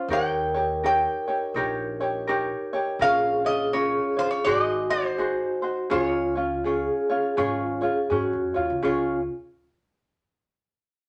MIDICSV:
0, 0, Header, 1, 5, 480
1, 0, Start_track
1, 0, Key_signature, -5, "major"
1, 0, Tempo, 729040
1, 59, Time_signature, 4, 2, 24, 8
1, 7297, End_track
2, 0, Start_track
2, 0, Title_t, "Resonator guitar played with a steel bar"
2, 0, Program_c, 0, 25
2, 0, Note_on_c, 0, 77, 84
2, 83, Note_off_c, 0, 77, 0
2, 84, Note_on_c, 0, 79, 101
2, 556, Note_off_c, 0, 79, 0
2, 564, Note_on_c, 0, 79, 89
2, 1005, Note_off_c, 0, 79, 0
2, 1988, Note_on_c, 0, 77, 115
2, 2275, Note_off_c, 0, 77, 0
2, 2278, Note_on_c, 0, 75, 100
2, 2457, Note_on_c, 0, 73, 92
2, 2466, Note_off_c, 0, 75, 0
2, 2754, Note_off_c, 0, 73, 0
2, 2757, Note_on_c, 0, 72, 93
2, 2832, Note_off_c, 0, 72, 0
2, 2835, Note_on_c, 0, 73, 89
2, 2927, Note_on_c, 0, 74, 101
2, 2936, Note_off_c, 0, 73, 0
2, 3045, Note_off_c, 0, 74, 0
2, 3045, Note_on_c, 0, 75, 101
2, 3229, Note_on_c, 0, 72, 96
2, 3236, Note_off_c, 0, 75, 0
2, 3890, Note_off_c, 0, 72, 0
2, 3893, Note_on_c, 0, 73, 89
2, 5310, Note_off_c, 0, 73, 0
2, 7297, End_track
3, 0, Start_track
3, 0, Title_t, "Ukulele"
3, 0, Program_c, 1, 24
3, 0, Note_on_c, 1, 61, 48
3, 0, Note_on_c, 1, 65, 55
3, 67, Note_off_c, 1, 61, 0
3, 67, Note_off_c, 1, 65, 0
3, 67, Note_on_c, 1, 70, 77
3, 70, Note_on_c, 1, 63, 87
3, 73, Note_on_c, 1, 67, 90
3, 77, Note_on_c, 1, 73, 95
3, 350, Note_off_c, 1, 73, 0
3, 357, Note_off_c, 1, 70, 0
3, 358, Note_off_c, 1, 63, 0
3, 358, Note_on_c, 1, 73, 60
3, 359, Note_off_c, 1, 67, 0
3, 366, Note_on_c, 1, 67, 53
3, 374, Note_on_c, 1, 63, 47
3, 541, Note_off_c, 1, 73, 0
3, 545, Note_off_c, 1, 67, 0
3, 546, Note_off_c, 1, 63, 0
3, 549, Note_on_c, 1, 70, 60
3, 554, Note_on_c, 1, 63, 66
3, 555, Note_on_c, 1, 67, 66
3, 562, Note_on_c, 1, 73, 65
3, 832, Note_off_c, 1, 73, 0
3, 835, Note_off_c, 1, 67, 0
3, 838, Note_off_c, 1, 70, 0
3, 840, Note_on_c, 1, 73, 60
3, 841, Note_off_c, 1, 63, 0
3, 843, Note_on_c, 1, 67, 54
3, 852, Note_on_c, 1, 63, 46
3, 1017, Note_off_c, 1, 63, 0
3, 1022, Note_off_c, 1, 73, 0
3, 1023, Note_off_c, 1, 67, 0
3, 1025, Note_on_c, 1, 63, 83
3, 1026, Note_on_c, 1, 70, 81
3, 1033, Note_on_c, 1, 67, 93
3, 1033, Note_on_c, 1, 73, 90
3, 1312, Note_off_c, 1, 73, 0
3, 1316, Note_off_c, 1, 63, 0
3, 1316, Note_off_c, 1, 70, 0
3, 1317, Note_off_c, 1, 67, 0
3, 1320, Note_on_c, 1, 73, 62
3, 1325, Note_on_c, 1, 67, 54
3, 1336, Note_on_c, 1, 63, 50
3, 1497, Note_on_c, 1, 70, 77
3, 1498, Note_off_c, 1, 67, 0
3, 1499, Note_off_c, 1, 63, 0
3, 1501, Note_off_c, 1, 73, 0
3, 1506, Note_on_c, 1, 67, 83
3, 1507, Note_on_c, 1, 63, 77
3, 1508, Note_on_c, 1, 73, 80
3, 1790, Note_off_c, 1, 73, 0
3, 1792, Note_off_c, 1, 70, 0
3, 1796, Note_off_c, 1, 67, 0
3, 1797, Note_off_c, 1, 63, 0
3, 1797, Note_on_c, 1, 73, 63
3, 1805, Note_on_c, 1, 67, 59
3, 1814, Note_on_c, 1, 63, 55
3, 1980, Note_off_c, 1, 73, 0
3, 1981, Note_on_c, 1, 70, 88
3, 1982, Note_off_c, 1, 63, 0
3, 1984, Note_off_c, 1, 67, 0
3, 1984, Note_on_c, 1, 61, 91
3, 1988, Note_on_c, 1, 65, 88
3, 1992, Note_on_c, 1, 73, 96
3, 2261, Note_off_c, 1, 73, 0
3, 2268, Note_on_c, 1, 73, 58
3, 2273, Note_off_c, 1, 65, 0
3, 2274, Note_off_c, 1, 70, 0
3, 2275, Note_off_c, 1, 61, 0
3, 2281, Note_on_c, 1, 65, 53
3, 2288, Note_on_c, 1, 61, 47
3, 2455, Note_off_c, 1, 61, 0
3, 2456, Note_off_c, 1, 65, 0
3, 2456, Note_off_c, 1, 73, 0
3, 2456, Note_on_c, 1, 70, 61
3, 2463, Note_on_c, 1, 61, 65
3, 2463, Note_on_c, 1, 65, 65
3, 2466, Note_on_c, 1, 73, 72
3, 2735, Note_off_c, 1, 73, 0
3, 2743, Note_on_c, 1, 73, 51
3, 2745, Note_off_c, 1, 65, 0
3, 2749, Note_off_c, 1, 61, 0
3, 2752, Note_off_c, 1, 70, 0
3, 2753, Note_on_c, 1, 65, 50
3, 2757, Note_on_c, 1, 61, 45
3, 2933, Note_off_c, 1, 73, 0
3, 2936, Note_on_c, 1, 68, 80
3, 2937, Note_off_c, 1, 61, 0
3, 2938, Note_off_c, 1, 65, 0
3, 2940, Note_on_c, 1, 63, 85
3, 2941, Note_on_c, 1, 66, 93
3, 2943, Note_on_c, 1, 72, 85
3, 3218, Note_off_c, 1, 72, 0
3, 3226, Note_off_c, 1, 66, 0
3, 3226, Note_on_c, 1, 72, 58
3, 3231, Note_off_c, 1, 63, 0
3, 3231, Note_off_c, 1, 68, 0
3, 3234, Note_on_c, 1, 66, 52
3, 3239, Note_on_c, 1, 63, 46
3, 3405, Note_off_c, 1, 63, 0
3, 3410, Note_off_c, 1, 66, 0
3, 3412, Note_on_c, 1, 68, 70
3, 3413, Note_on_c, 1, 63, 64
3, 3414, Note_off_c, 1, 72, 0
3, 3418, Note_on_c, 1, 66, 73
3, 3424, Note_on_c, 1, 72, 66
3, 3693, Note_off_c, 1, 72, 0
3, 3700, Note_on_c, 1, 72, 54
3, 3701, Note_off_c, 1, 66, 0
3, 3706, Note_off_c, 1, 63, 0
3, 3708, Note_on_c, 1, 66, 48
3, 3709, Note_off_c, 1, 68, 0
3, 3714, Note_on_c, 1, 63, 44
3, 3883, Note_on_c, 1, 68, 87
3, 3884, Note_off_c, 1, 63, 0
3, 3886, Note_on_c, 1, 61, 86
3, 3889, Note_off_c, 1, 66, 0
3, 3892, Note_off_c, 1, 72, 0
3, 3892, Note_on_c, 1, 65, 93
3, 3895, Note_on_c, 1, 73, 85
3, 4175, Note_off_c, 1, 73, 0
3, 4183, Note_on_c, 1, 73, 52
3, 4185, Note_off_c, 1, 65, 0
3, 4185, Note_off_c, 1, 68, 0
3, 4187, Note_off_c, 1, 61, 0
3, 4193, Note_on_c, 1, 65, 51
3, 4196, Note_on_c, 1, 61, 49
3, 4373, Note_on_c, 1, 68, 56
3, 4374, Note_off_c, 1, 73, 0
3, 4375, Note_off_c, 1, 61, 0
3, 4376, Note_off_c, 1, 65, 0
3, 4382, Note_on_c, 1, 61, 63
3, 4384, Note_on_c, 1, 65, 64
3, 4391, Note_on_c, 1, 73, 66
3, 4664, Note_off_c, 1, 73, 0
3, 4669, Note_off_c, 1, 65, 0
3, 4670, Note_off_c, 1, 68, 0
3, 4672, Note_on_c, 1, 73, 60
3, 4675, Note_off_c, 1, 61, 0
3, 4677, Note_on_c, 1, 65, 58
3, 4683, Note_on_c, 1, 61, 46
3, 4848, Note_off_c, 1, 61, 0
3, 4848, Note_off_c, 1, 65, 0
3, 4850, Note_off_c, 1, 73, 0
3, 4852, Note_on_c, 1, 68, 90
3, 4856, Note_on_c, 1, 61, 99
3, 4856, Note_on_c, 1, 65, 90
3, 4858, Note_on_c, 1, 73, 99
3, 5138, Note_off_c, 1, 73, 0
3, 5146, Note_on_c, 1, 73, 62
3, 5147, Note_off_c, 1, 65, 0
3, 5150, Note_off_c, 1, 68, 0
3, 5151, Note_off_c, 1, 61, 0
3, 5155, Note_on_c, 1, 65, 56
3, 5158, Note_on_c, 1, 61, 51
3, 5329, Note_off_c, 1, 65, 0
3, 5332, Note_on_c, 1, 68, 75
3, 5334, Note_off_c, 1, 61, 0
3, 5335, Note_off_c, 1, 73, 0
3, 5342, Note_on_c, 1, 61, 79
3, 5349, Note_on_c, 1, 73, 71
3, 5616, Note_off_c, 1, 73, 0
3, 5624, Note_on_c, 1, 73, 57
3, 5629, Note_off_c, 1, 61, 0
3, 5630, Note_off_c, 1, 68, 0
3, 5633, Note_on_c, 1, 65, 53
3, 5637, Note_on_c, 1, 61, 49
3, 5806, Note_off_c, 1, 61, 0
3, 5810, Note_on_c, 1, 68, 84
3, 5814, Note_on_c, 1, 61, 86
3, 5815, Note_off_c, 1, 73, 0
3, 5816, Note_off_c, 1, 65, 0
3, 5824, Note_on_c, 1, 65, 91
3, 5825, Note_on_c, 1, 73, 98
3, 6051, Note_off_c, 1, 68, 0
3, 6053, Note_off_c, 1, 61, 0
3, 6057, Note_off_c, 1, 65, 0
3, 6058, Note_off_c, 1, 73, 0
3, 7297, End_track
4, 0, Start_track
4, 0, Title_t, "Vibraphone"
4, 0, Program_c, 2, 11
4, 0, Note_on_c, 2, 72, 101
4, 57, Note_on_c, 2, 70, 97
4, 119, Note_off_c, 2, 72, 0
4, 1950, Note_off_c, 2, 70, 0
4, 1980, Note_on_c, 2, 68, 101
4, 2939, Note_on_c, 2, 66, 88
4, 2967, Note_off_c, 2, 68, 0
4, 3897, Note_on_c, 2, 65, 86
4, 3928, Note_off_c, 2, 66, 0
4, 4382, Note_on_c, 2, 68, 86
4, 4393, Note_off_c, 2, 65, 0
4, 4863, Note_on_c, 2, 65, 83
4, 4875, Note_off_c, 2, 68, 0
4, 5143, Note_on_c, 2, 68, 81
4, 5164, Note_off_c, 2, 65, 0
4, 5337, Note_on_c, 2, 66, 80
4, 5339, Note_off_c, 2, 68, 0
4, 5625, Note_on_c, 2, 65, 68
4, 5642, Note_off_c, 2, 66, 0
4, 5802, Note_off_c, 2, 65, 0
4, 5819, Note_on_c, 2, 65, 70
4, 6094, Note_off_c, 2, 65, 0
4, 7297, End_track
5, 0, Start_track
5, 0, Title_t, "Upright bass"
5, 0, Program_c, 3, 32
5, 55, Note_on_c, 3, 39, 107
5, 680, Note_off_c, 3, 39, 0
5, 1016, Note_on_c, 3, 34, 101
5, 1641, Note_off_c, 3, 34, 0
5, 1970, Note_on_c, 3, 34, 100
5, 2597, Note_off_c, 3, 34, 0
5, 2938, Note_on_c, 3, 32, 97
5, 3562, Note_off_c, 3, 32, 0
5, 3895, Note_on_c, 3, 37, 106
5, 4520, Note_off_c, 3, 37, 0
5, 4858, Note_on_c, 3, 32, 94
5, 5171, Note_off_c, 3, 32, 0
5, 5335, Note_on_c, 3, 44, 85
5, 5470, Note_off_c, 3, 44, 0
5, 5483, Note_on_c, 3, 41, 83
5, 5617, Note_off_c, 3, 41, 0
5, 5635, Note_on_c, 3, 39, 82
5, 5718, Note_off_c, 3, 39, 0
5, 5726, Note_on_c, 3, 37, 84
5, 5810, Note_off_c, 3, 37, 0
5, 5824, Note_on_c, 3, 37, 89
5, 6096, Note_off_c, 3, 37, 0
5, 7297, End_track
0, 0, End_of_file